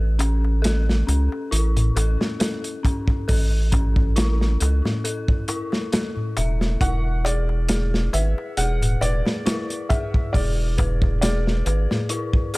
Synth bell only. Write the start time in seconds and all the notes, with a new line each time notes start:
Already playing: A4
0.19 C#4
0.62 A4
1.07 C#4
1.51 E4
1.96 A4
2.40 A4
2.83 C#4
3.28 A4
3.72 C#4
4.16 E4
4.61 A4
5.04 A4
5.49 E4
5.93 A4
6.37 E5
6.81 E4
7.25 G#4
7.69 G#4
8.13 B4
8.58 G#4
9.01 B4
9.46 E4
9.90 G#4
10.34 G#4
10.78 B4
11.23 G#4
11.66 B4
12.10 E4
12.54 G#4